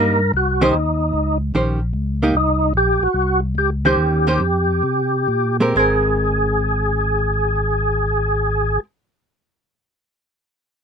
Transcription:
0.00 0.32 G2 medium
0.00 0.18 G3 soft
0.00 0.19 A#3 soft
0.00 0.19 D#4 soft
0.00 0.32 A#4 medium
0.34 0.73 C2 medium
0.34 0.63 F#4 medium
0.61 0.73 D#3 medium
0.61 0.73 C#4 medium
0.61 1.38 D#4 medium
0.61 0.73 G4 medium
0.61 0.73 C5 medium
0.74 1.13 D#2 medium
1.13 1.53 C#2 medium
1.54 1.93 A#1 medium
1.54 1.78 D#3 soft
1.54 1.79 C#4 soft
1.54 1.79 G4 soft
1.54 1.79 C5 medium
1.93 2.33 C#2 medium
2.23 2.34 A#3 medium
2.23 2.34 D#4 medium
2.23 2.34 G4 medium
2.34 2.73 C2 medium
2.34 2.73 D#4 medium
2.74 2.99 A#1 medium
2.74 3.04 G4 medium
3.01 3.08 A#1 soft
3.01 3.40 F#4 medium
3.14 3.54 C2 medium
3.55 3.96 C#2 medium
3.55 3.70 G4 medium
3.85 4.26 D#3 medium
3.85 4.26 C#4 medium
3.85 5.57 G4 medium
3.85 4.27 G4 medium
3.85 4.27 C5 medium
3.97 4.39 D#2 medium
4.27 4.39 D#3 medium
4.27 4.40 C#4 medium
4.27 4.40 G4 medium
4.27 4.40 C5 medium
4.40 4.83 F2 medium
4.83 5.27 C3 medium
5.28 5.74 A#2 medium
5.60 5.74 G#3 medium
5.60 5.75 C4 medium
5.60 5.75 G4 medium
5.60 5.75 A#4 medium
5.75 8.78 G#1 medium
5.75 8.83 G#3 medium
5.75 8.84 C4 medium
5.75 8.80 G#4 medium
5.79 8.86 A#4 medium

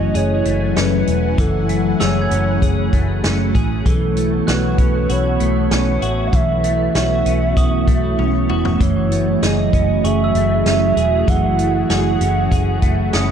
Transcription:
0.00 0.11 F#1 medium
0.00 1.38 E3 medium
0.00 3.82 F#3 medium
0.00 0.45 A3 medium
0.00 13.31 A3 medium
0.00 0.76 C#4 medium
0.00 3.82 E4 medium
0.00 0.13 G#4 medium
0.00 0.17 D#5 loud
0.00 3.82 F#5 medium
0.00 3.82 G#5 medium
0.00 1.85 C#6 soft
0.14 0.42 F#1 medium
0.14 1.07 G#4 medium
0.14 0.79 C#5 loud
0.14 closed hi-hat medium
0.45 0.73 F#1 loud
0.45 1.69 A3 medium
0.45 closed hi-hat soft
0.76 1.04 F#1 medium
0.76 2.31 C#4 medium
0.76 1.41 B4 medium
0.76 snare loud
0.76 closed hi-hat medium
1.07 1.35 E1 medium
1.07 closed hi-hat soft
1.38 1.93 F#1 loud
1.38 3.85 E3 medium
1.38 2.03 A4 medium
1.38 kick loud
1.38 closed hi-hat medium
1.69 2.93 A3 medium
1.69 closed hi-hat medium
2.00 2.28 F#1 medium
2.00 2.61 G#4 medium
2.00 2.94 C#5 medium
2.00 4.13 E6 medium
2.00 snare loud
2.00 closed hi-hat medium
2.21 4.31 G#6 soft
2.31 2.58 F#1 loud
2.31 3.24 C#4 medium
2.31 closed hi-hat soft
2.62 2.89 F#1 medium
2.62 3.53 G#4 medium
2.62 kick medium
2.62 closed hi-hat medium
2.93 3.20 F#1 medium
2.93 4.17 A3 medium
2.93 kick medium
2.93 closed hi-hat soft
3.24 3.51 F#1 medium
3.24 4.78 C#4 medium
3.24 snare loud
3.24 closed hi-hat medium
3.55 3.82 A1 medium
3.55 3.92 G#4 medium
3.55 kick medium
3.55 closed hi-hat soft
3.86 4.40 B1 loud
3.86 6.33 E3 medium
3.86 8.77 B3 medium
3.86 13.31 E4 medium
3.86 13.31 F#4 medium
3.86 4.51 A4 medium
3.86 8.77 C#5 medium
3.86 kick loud
3.86 closed hi-hat medium
4.17 5.40 A3 medium
4.17 closed hi-hat medium
4.47 4.75 B1 medium
4.47 5.09 F#4 medium
4.47 5.13 B4 medium
4.47 6.79 F#6 soft
4.47 snare loud
4.47 closed hi-hat medium
4.78 5.06 B1 loud
4.78 5.71 C#4 medium
4.78 kick medium
4.78 closed hi-hat soft
5.09 5.37 B1 loud
5.09 6.02 F#4 medium
5.09 5.72 C#5 medium
5.09 closed hi-hat medium
5.40 5.68 B1 loud
5.40 6.63 A3 medium
5.40 closed hi-hat soft
5.71 5.99 B1 loud
5.71 7.26 C#4 medium
5.71 6.28 C#5 medium
5.71 snare loud
5.71 closed hi-hat medium
6.02 6.29 A1 medium
6.02 6.95 F#4 medium
6.02 closed hi-hat soft
6.27 6.36 F#5 medium
6.33 6.88 B1 medium
6.33 8.80 E3 medium
6.33 6.96 E5 loud
6.33 kick medium
6.33 closed hi-hat medium
6.64 7.87 A3 medium
6.64 closed hi-hat medium
6.95 7.22 B1 medium
6.95 7.56 F#4 medium
6.95 8.16 E5 medium
6.95 snare loud
6.95 closed hi-hat medium
7.26 7.53 B1 loud
7.26 8.18 C#4 medium
7.26 closed hi-hat soft
7.57 7.84 B1 medium
7.57 8.49 F#4 medium
7.57 9.08 D#6 medium
7.57 kick medium
7.57 closed hi-hat medium
7.88 8.15 B1 medium
7.88 9.11 A3 medium
7.88 kick medium
7.88 closed hi-hat soft
8.19 8.46 B1 medium
8.19 9.73 C#4 medium
8.19 high tom soft
8.49 8.77 E1 medium
8.49 9.42 F#4 medium
8.49 mid tom medium
8.65 floor tom medium
8.80 9.35 F#1 loud
8.80 11.28 E3 medium
8.80 13.31 F#3 medium
8.80 13.31 G#4 medium
8.80 9.45 C#5 medium
8.80 kick loud
8.80 closed hi-hat medium
9.12 10.35 A3 medium
9.12 closed hi-hat soft
9.42 9.70 F#1 medium
9.42 10.03 G#4 medium
9.42 10.07 D#5 medium
9.42 snare loud
9.42 closed hi-hat medium
9.73 10.01 F#1 medium
9.73 10.66 C#4 medium
9.73 kick medium
9.73 closed hi-hat soft
10.04 10.31 F#1 medium
10.04 10.96 G#4 medium
10.04 10.67 E5 loud
10.04 12.36 C#6 medium
10.04 closed hi-hat medium
10.24 12.53 E6 soft
10.35 10.62 F#1 loud
10.35 11.58 A3 medium
10.35 closed hi-hat soft
10.66 10.93 F#1 medium
10.66 12.20 C#4 medium
10.66 11.31 E5 medium
10.66 snare loud
10.66 closed hi-hat medium
10.96 11.24 E1 medium
10.96 11.89 G#4 medium
10.96 closed hi-hat soft
11.28 11.82 F#1 loud
11.28 13.31 E3 medium
11.28 11.90 F#5 loud
11.28 kick loud
11.28 closed hi-hat medium
11.59 12.82 A3 medium
11.59 closed hi-hat soft
11.90 12.17 F#1 medium
11.90 12.50 G#4 medium
11.90 13.10 F#5 loud
11.90 snare loud
11.90 closed hi-hat medium
12.21 12.48 F#1 loud
12.21 13.13 C#4 medium
12.21 closed hi-hat soft
12.51 12.79 F#1 medium
12.51 13.31 G#4 medium
12.51 kick medium
12.51 closed hi-hat medium
12.82 13.10 F#1 medium
12.82 13.31 A3 medium
12.82 kick medium
12.82 closed hi-hat soft
13.13 13.31 F#1 medium
13.13 13.31 C#4 medium
13.13 13.31 D#6 medium
13.13 snare loud
13.13 closed hi-hat medium

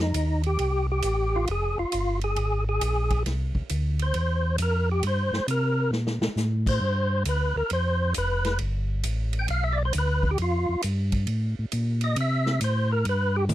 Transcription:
0.00 0.13 F2 medium
0.00 0.42 D#4 medium
0.14 0.57 D#2 medium
0.14 hi-hat pedal medium
0.14 ride medium
0.43 0.87 G4 medium
0.43 ride soft
0.59 1.02 C2 medium
0.59 ride medium
0.92 1.45 G4 medium
1.02 1.46 A1 medium
1.02 hi-hat pedal medium
1.02 ride medium
1.36 1.49 F4 medium
1.47 1.75 F1 medium
1.47 1.78 G#4 medium
1.47 ride medium
1.78 1.85 F1 soft
1.78 2.20 F4 medium
1.92 2.36 G1 medium
1.92 hi-hat pedal medium
1.92 ride medium
2.21 2.64 G#4 medium
2.21 ride soft
2.36 2.80 G#1 medium
2.36 ride medium
2.69 3.23 G#4 medium
2.81 3.24 A#1 loud
2.81 hi-hat pedal medium
2.81 ride medium
3.10 kick soft
3.10 ride soft
3.26 3.53 C2 medium
3.26 snare soft
3.26 ride medium
3.55 3.62 C2 soft
3.55 kick soft
3.69 4.13 D2 medium
3.69 hi-hat pedal medium
3.69 ride medium
3.99 4.56 C5 medium
3.99 ride soft
4.14 4.58 E2 medium
4.14 ride medium
4.58 5.02 F2 medium
4.58 hi-hat pedal medium
4.58 ride medium
4.62 4.89 A#4 medium
4.91 5.05 G4 medium
5.03 5.31 G2 medium
5.03 ride medium
5.07 5.47 C5 medium
5.33 5.40 G2 soft
5.33 snare soft
5.47 5.91 C3 medium
5.47 5.91 A#4 medium
5.47 hi-hat pedal medium
5.47 ride medium
5.91 6.19 A#2 medium
5.91 snare soft
6.07 snare medium
6.21 6.29 A#2 soft
6.21 snare medium
6.36 6.80 A2 medium
6.36 snare medium
6.36 hi-hat pedal medium
6.66 7.23 C5 loud
6.66 kick medium
6.66 crash medium
6.81 7.24 G2 medium
7.25 7.54 D2 medium
7.25 7.56 B4 medium
7.25 hi-hat pedal soft
7.25 ride medium
7.56 7.63 D2 soft
7.56 7.71 A#4 medium
7.70 8.14 F2 medium
7.70 8.13 C5 loud
7.70 ride medium
8.14 8.59 F1 medium
8.14 8.58 B4 medium
8.14 hi-hat pedal medium
8.14 ride medium
8.45 snare soft
8.45 ride soft
8.59 9.03 G1 medium
8.59 ride medium
9.03 9.47 A1 medium
9.03 hi-hat pedal medium
9.03 ride medium
9.33 ride soft
9.39 9.47 G5 medium
9.48 9.92 B1 medium
9.48 9.64 F5 medium
9.48 ride medium
9.64 9.78 E5 loud
9.72 9.83 D5 loud
9.85 9.93 C5 loud
9.93 10.37 D2 medium
9.93 hi-hat pedal medium
9.93 ride medium
9.98 10.31 B4 medium
10.23 kick medium
10.31 10.38 G4 medium
10.38 10.66 F2 medium
10.38 ride medium
10.42 10.82 F4 medium
10.69 10.76 F2 soft
10.82 11.27 G2 medium
10.82 hi-hat pedal medium
10.82 ride medium
11.12 kick soft
11.12 ride medium
11.27 11.55 A2 medium
11.27 ride medium
11.59 11.66 A2 soft
11.72 12.16 A#2 medium
11.72 hi-hat pedal medium
11.72 ride medium
12.01 12.17 D#5 loud
12.01 ride medium
12.16 12.60 C3 medium
12.16 ride medium
12.20 12.60 E5 loud
12.46 snare soft
12.61 13.05 A2 medium
12.61 12.91 C5 medium
12.61 hi-hat pedal medium
12.61 ride medium
12.92 13.06 A#4 medium
13.05 13.49 G2 medium
13.05 ride medium
13.09 13.36 B4 loud
13.36 13.45 G4 loud
13.49 13.54 A2 medium
13.49 hi-hat pedal medium
13.49 mid tom medium

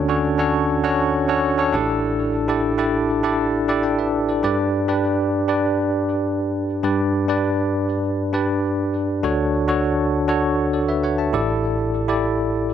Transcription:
0.00 1.70 D2 medium
0.00 1.70 D3 medium
0.00 0.08 C#4 medium
0.00 0.09 D4 medium
0.00 0.09 F#4 medium
0.00 0.09 A4 medium
0.00 0.09 C#5 loud
0.08 0.34 C#4 medium
0.08 0.34 D4 medium
0.08 0.34 F#4 medium
0.08 0.35 A4 medium
0.08 0.35 C#5 medium
0.38 0.77 C#4 medium
0.38 0.77 D4 medium
0.38 0.77 F#4 medium
0.38 0.77 A4 medium
0.38 0.78 C#5 loud
0.83 1.22 C#4 medium
0.83 1.22 D4 medium
0.83 1.22 F#4 medium
0.83 1.22 A4 medium
0.83 1.23 C#5 loud
1.28 1.54 C#4 medium
1.28 1.54 D4 medium
1.28 1.54 F#4 medium
1.28 1.54 A4 medium
1.28 1.55 C#5 loud
1.58 1.73 C#4 medium
1.58 1.72 D4 medium
1.58 1.74 F#4 medium
1.58 1.73 A4 medium
1.58 1.74 C#5 medium
1.73 4.10 A1 medium
1.73 4.09 A2 medium
1.73 2.37 D4 medium
1.73 2.38 E4 medium
1.73 2.38 G4 medium
1.73 2.38 A4 medium
1.73 2.38 D5 loud
2.48 2.74 D4 medium
2.48 2.74 E4 medium
2.48 2.74 G4 medium
2.48 2.75 A4 medium
2.48 2.75 D5 loud
2.78 3.17 D4 medium
2.78 3.17 E4 medium
2.78 3.17 G4 medium
2.78 3.17 A4 medium
2.78 3.17 D5 medium
3.23 3.62 D4 medium
3.23 3.62 E4 medium
3.23 3.62 G4 medium
3.23 3.62 A4 medium
3.23 3.63 D5 medium
3.68 3.94 D4 medium
3.68 3.94 E4 medium
3.68 3.94 G4 medium
3.68 3.84 A4 medium
3.68 3.83 D5 medium
3.83 3.98 D5 medium
3.83 3.98 G5 medium
3.99 4.28 B4 medium
3.99 4.27 E5 medium
4.29 4.58 A4 medium
4.29 4.43 D5 medium
4.43 6.80 G2 medium
4.43 4.82 D4 medium
4.43 4.82 G4 medium
4.43 4.82 B4 medium
4.43 4.83 D5 medium
4.88 5.40 D4 medium
4.88 5.40 G4 medium
4.88 5.40 B4 medium
4.88 5.40 D5 medium
5.48 6.51 D4 medium
5.48 6.51 G4 medium
5.48 6.52 B4 medium
5.48 6.52 D5 medium
6.83 9.20 G2 medium
6.83 7.22 D4 medium
6.83 7.22 G4 medium
6.83 7.22 B4 medium
6.83 7.23 D5 loud
7.28 8.18 D4 medium
7.28 8.19 G4 medium
7.28 8.19 B4 medium
7.28 8.19 D5 medium
8.33 9.10 D4 medium
8.33 9.11 G4 medium
8.33 9.11 B4 medium
8.33 9.11 D5 medium
9.23 11.30 D2 medium
9.23 11.30 D3 medium
9.23 9.62 D4 medium
9.23 9.62 F#4 medium
9.23 9.62 A4 medium
9.23 9.63 C#5 loud
9.68 10.20 D4 medium
9.68 10.20 F#4 medium
9.68 10.20 A4 medium
9.68 10.20 C#5 medium
10.28 11.31 D4 medium
10.28 11.31 F#4 medium
10.28 10.73 A4 medium
10.28 10.74 C#5 medium
10.73 10.88 A4 medium
10.73 10.88 D5 medium
10.88 11.03 B4 medium
10.88 11.03 E5 medium
11.03 11.18 C#5 medium
11.03 11.18 F#5 medium
11.18 11.47 E5 soft
11.18 11.47 A5 medium
11.33 12.74 A1 medium
11.33 12.74 A2 medium
11.33 11.98 E4 medium
11.33 11.98 G4 medium
11.33 11.98 A4 medium
11.33 11.98 D5 loud
12.08 12.74 E4 medium
12.08 12.74 G4 medium
12.08 12.74 A4 medium
12.08 12.74 D5 medium

